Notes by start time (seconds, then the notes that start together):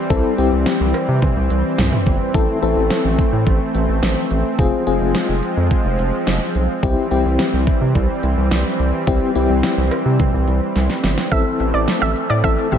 Already playing: E3 G3 C4
0.10 C2 C4 E4 A4, kick, closed hi-hat
0.38 C2 C4 E4 G4, closed hi-hat
0.52 C2
0.66 snare, closed hi-hat
0.80 C2
0.94 closed hi-hat, cowbell
1.08 C3
1.22 kick, closed hi-hat, mid tom
1.36 C2
1.50 C2, closed hi-hat
1.78 C2, snare, closed hi-hat, mid tom
1.92 mid tom
2.06 G1, kick, closed hi-hat
2.34 A1 A3 C4 E4 A4, kick, closed hi-hat
2.62 A1 C4 E4 A4, closed hi-hat
2.76 A1
2.90 snare, closed hi-hat
3.04 A1
3.19 kick, closed hi-hat
3.33 A2
3.47 A1, kick, closed hi-hat
3.75 A1, closed hi-hat
3.89 A1
4.03 A1, snare, closed hi-hat
4.31 A1, closed hi-hat
4.59 F1 F3 G#3 C4 F4 G#4, kick, closed hi-hat
4.87 F1 C4 F4 G#4, closed hi-hat
5.01 F1
5.15 snare, closed hi-hat
5.29 F1
5.43 closed hi-hat
5.57 F2
5.71 kick, closed hi-hat
5.85 F1
5.99 F1, closed hi-hat
6.27 F1, snare, closed hi-hat
6.55 B1, closed hi-hat
6.83 C2 E3 G3 C4 E4 G4, kick, closed hi-hat
7.11 C2 C4 E4 G4, closed hi-hat
7.25 C2
7.39 snare, closed hi-hat
7.53 C2
7.67 kick, closed hi-hat
7.81 C3
7.95 C2, kick, closed hi-hat
8.23 C2, closed hi-hat
8.37 C2
8.51 C2, snare, closed hi-hat
8.79 C2, closed hi-hat
9.07 C2 C4 E4 G4, kick, closed hi-hat
9.35 C2 C4 E4 G4, closed hi-hat
9.49 C2
9.63 snare, closed hi-hat
9.77 C2
9.91 closed hi-hat, cowbell
10.06 C3
10.20 kick, closed hi-hat, mid tom
10.34 C2
10.48 C2, closed hi-hat
10.76 C2, snare, closed hi-hat
10.90 snare
11.04 G1, snare, closed hi-hat
11.18 snare
11.32 A1 E3 A3 C4 E4 A4 E5, kick, closed hi-hat
11.60 A1, closed hi-hat
11.74 A1 D5
11.88 snare, closed hi-hat
12.02 A1 E5
12.16 closed hi-hat
12.30 A2 D5
12.44 A1 C4 E4 A4 E5, kick, closed hi-hat
12.72 A1 C4 E4 G4, closed hi-hat, mid tom